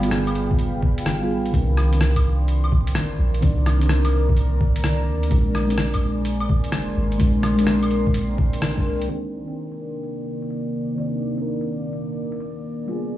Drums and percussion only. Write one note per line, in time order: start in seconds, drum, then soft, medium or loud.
0.03 closed hi-hat medium
0.11 cross-stick loud
0.27 closed hi-hat medium
0.27 claves medium
0.35 closed hi-hat soft
0.51 kick loud
0.59 closed hi-hat medium
0.83 kick loud
0.98 closed hi-hat medium
1.06 cross-stick loud
1.06 closed hi-hat medium
1.46 closed hi-hat soft
1.54 kick loud
1.54 closed hi-hat soft
1.77 cross-stick medium
1.77 claves medium
1.93 closed hi-hat medium
2.01 cross-stick loud
2.16 kick medium
2.16 closed hi-hat medium
2.16 claves medium
2.48 closed hi-hat medium
2.64 claves medium
2.72 kick loud
2.87 closed hi-hat medium
2.95 cross-stick loud
2.95 closed hi-hat soft
3.34 closed hi-hat soft
3.42 kick loud
3.42 closed hi-hat medium
3.66 cross-stick medium
3.66 claves medium
3.81 closed hi-hat soft
3.89 cross-stick loud
4.05 closed hi-hat medium
4.05 claves medium
4.29 kick loud
4.37 closed hi-hat medium
4.61 kick loud
4.76 closed hi-hat medium
4.84 cross-stick medium
4.84 closed hi-hat medium
5.23 closed hi-hat soft
5.31 kick loud
5.31 closed hi-hat medium
5.55 cross-stick medium
5.55 claves medium
5.70 closed hi-hat medium
5.78 cross-stick loud
5.94 kick medium
5.94 closed hi-hat medium
5.94 claves medium
6.25 closed hi-hat medium
6.40 claves medium
6.50 kick loud
6.64 closed hi-hat medium
6.72 cross-stick medium
6.72 closed hi-hat medium
7.12 closed hi-hat soft
7.20 kick loud
7.20 closed hi-hat medium
7.43 cross-stick medium
7.43 claves medium
7.59 closed hi-hat medium
7.67 cross-stick loud
7.83 closed hi-hat medium
7.83 claves medium
7.91 closed hi-hat soft
8.07 kick loud
8.14 closed hi-hat medium
8.38 kick loud
8.53 closed hi-hat medium
8.62 cross-stick loud
8.62 closed hi-hat medium
8.78 kick medium
9.01 closed hi-hat soft
9.09 closed hi-hat soft
9.48 closed hi-hat soft
9.72 closed hi-hat soft
10.03 closed hi-hat medium
10.42 closed hi-hat soft
10.50 closed hi-hat soft
10.98 closed hi-hat medium
11.38 closed hi-hat soft
11.61 closed hi-hat soft
11.93 closed hi-hat medium
12.32 closed hi-hat medium
12.40 closed hi-hat soft
12.88 closed hi-hat soft